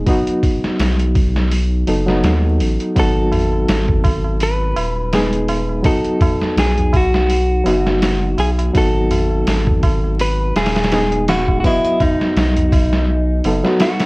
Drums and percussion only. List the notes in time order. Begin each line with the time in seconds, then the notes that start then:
0.07 kick, open hi-hat
0.27 closed hi-hat
0.43 kick, open hi-hat
0.64 snare
0.79 snare, open hi-hat
0.99 closed hi-hat
1.15 kick, open hi-hat
1.36 snare
1.52 open hi-hat
1.87 open hi-hat
2.08 snare
2.24 snare, open hi-hat
2.60 open hi-hat
2.80 closed hi-hat
2.96 kick, open hi-hat, tabla na
3.31 open hi-hat, tabla na, tabla ge
3.52 tabla na
3.68 snare, open hi-hat, tabla na
3.87 kick, tabla ge
4.04 kick, open hi-hat, tabla na
4.24 tabla na
4.40 open hi-hat, tabla na
4.76 open hi-hat, tabla na
4.96 tabla na
5.13 snare, open hi-hat, tabla na
5.33 closed hi-hat
5.49 open hi-hat, tabla na
5.69 tabla na
5.85 kick, open hi-hat, tabla na
6.05 closed hi-hat
6.21 kick, open hi-hat, tabla na, tabla ge
6.41 snare, tabla na
6.58 snare, open hi-hat, tabla na
6.78 closed hi-hat, tabla ge
6.93 kick, open hi-hat, tabla na
7.14 snare, tabla na
7.30 open hi-hat, tabla na
7.66 open hi-hat, tabla na
7.86 snare, tabla na
8.02 snare, open hi-hat, tabla na
8.38 open hi-hat, tabla na
8.58 closed hi-hat, tabla na
8.75 kick, open hi-hat, tabla na
9.10 open hi-hat, tabla na, tabla ge
9.30 tabla na
9.47 snare, open hi-hat, tabla na
9.67 kick, tabla ge
9.83 kick, open hi-hat, tabla na
10.04 tabla na
10.20 open hi-hat, tabla na
10.56 snare, open hi-hat, tabla na
10.66 snare, open hi-hat
10.76 snare, open hi-hat, tabla na
10.84 snare, open hi-hat
10.92 snare, open hi-hat, tabla na
11.12 closed hi-hat
11.28 snare, open hi-hat, tabla na
11.48 kick, tabla na
11.64 kick, open hi-hat, tabla na
11.84 closed hi-hat
12.00 kick, open hi-hat, tabla na, tabla ge
12.20 snare, tabla na
12.37 snare, open hi-hat, tabla na
12.57 closed hi-hat, tabla ge
12.72 kick, open hi-hat, tabla na
12.93 snare, tabla na
13.10 tabla na
13.44 open hi-hat, tabla na
13.64 snare, tabla na
13.80 snare, open hi-hat
14.00 snare, open hi-hat